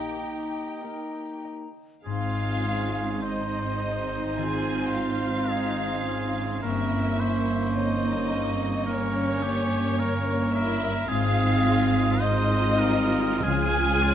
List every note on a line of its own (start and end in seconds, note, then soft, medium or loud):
0.00 0.61 A#1 soft
0.00 0.61 A#2 soft
0.00 1.08 D#3 soft
0.00 1.68 A#3 soft
0.00 2.12 A#3 soft
0.00 0.22 D#4 soft
0.00 1.68 D#4 soft
0.00 1.69 D#4 soft
0.00 1.46 G4 soft
0.00 0.83 A#4 soft
0.00 1.44 D#5 soft
0.00 1.45 D#5 medium
0.00 1.46 G5 medium
0.00 1.69 A#5 soft
0.23 4.13 D#4 soft
0.82 1.78 A#3 soft
0.82 1.77 D#4 soft
0.82 2.11 A#4 soft
1.45 3.21 D#5 soft
2.03 6.60 G#1 soft
2.03 6.60 G#2 soft
2.03 5.96 G#2 soft
2.03 3.19 G#3 soft
2.03 2.61 C4 soft
2.03 6.59 D#4 medium
2.03 3.20 F4 medium
2.03 3.19 G#4 soft
2.03 3.20 F5 medium
2.07 3.21 C4 soft
2.07 3.21 D#4 soft
2.07 6.61 C6 soft
2.64 4.93 C4 soft
2.64 3.23 C#4 soft
3.22 6.63 C4 soft
3.22 4.37 C4 soft
3.22 4.38 D#4 soft
3.22 4.37 D#4 soft
3.22 5.52 C5 medium
3.22 5.49 D#5 soft
3.22 4.39 D#5 medium
3.81 6.05 C5 soft
4.37 6.68 D#3 soft
4.37 6.60 C4 soft
4.37 6.61 D#4 soft
4.37 5.51 F4 soft
4.37 4.95 G#4 medium
4.37 4.95 G#5 medium
4.93 6.68 C4 soft
4.93 6.60 F4 medium
4.93 6.64 F5 medium
5.50 6.07 D#4 soft
5.50 6.62 G#4 medium
5.50 6.68 D#5 soft
6.06 7.72 C#4 soft
6.06 6.68 C5 soft
6.63 11.06 G1 soft
6.63 10.53 G2 soft
6.63 11.06 G2 soft
6.63 10.92 A#3 medium
6.63 8.83 A#3 medium
6.63 7.19 C4 soft
6.63 8.83 C#4 medium
6.63 7.74 E4 medium
6.63 7.22 A#4 medium
6.63 7.76 E5 medium
6.63 10.80 C#6 soft
7.19 7.72 A#3 medium
7.19 9.41 A#3 soft
7.19 8.60 C5 medium
7.73 8.29 A#3 medium
7.73 8.28 C4 soft
7.73 8.87 D#4 medium
7.73 9.97 C#5 soft
7.73 8.85 D#5 medium
8.29 8.86 C4 soft
8.29 10.54 A#4 soft
8.86 11.14 G3 soft
8.86 10.93 A#3 medium
8.86 10.54 C#4 medium
8.86 10.93 C#4 medium
8.86 9.43 C#4 medium
8.86 9.45 A#4 medium
8.86 10.54 C#5 medium
9.41 9.95 A#3 medium
9.41 11.15 A#3 soft
9.41 10.01 G4 medium
9.96 11.07 A#3 medium
9.96 11.15 C#5 soft
10.00 10.55 A#4 medium
10.52 11.10 E4 medium
10.52 11.10 A#4 medium
10.52 11.15 A#4 medium
10.52 11.09 E5 medium
11.08 13.40 G#1 medium
11.08 13.40 G#2 medium
11.08 13.49 G#2 medium
11.08 12.17 G#3 medium
11.08 11.63 C4 medium
11.08 12.17 C4 medium
11.08 12.19 C4 medium
11.08 12.19 D#4 medium
11.08 12.19 F4 medium
11.08 12.22 G#4 medium
11.08 12.18 F5 medium
11.08 12.17 D#6 medium
11.63 13.49 C4 soft
11.63 14.14 F4 medium
12.19 12.79 G#3 medium
12.19 13.41 C4 medium
12.19 13.46 C4 medium
12.19 13.41 D#4 medium
12.19 13.44 D#4 medium
12.19 12.81 C5 medium
12.19 13.44 D#5 medium
12.19 13.49 D#5 medium
12.19 13.44 D#6 medium
12.80 13.43 G3 medium
12.80 13.45 A#4 medium
12.80 13.50 C5 medium
13.41 14.14 C#2 medium
13.41 14.00 F3 medium
13.41 14.14 C#4 medium
13.41 14.14 F4 medium
13.41 14.14 G#4 medium
13.41 14.04 G#4 medium
13.41 14.14 G#5 loud
13.41 14.14 F6 medium
13.46 14.14 C#3 medium
14.01 14.14 F3 medium
14.01 14.14 F4 medium
14.06 14.14 F4 soft
14.06 14.14 C#5 soft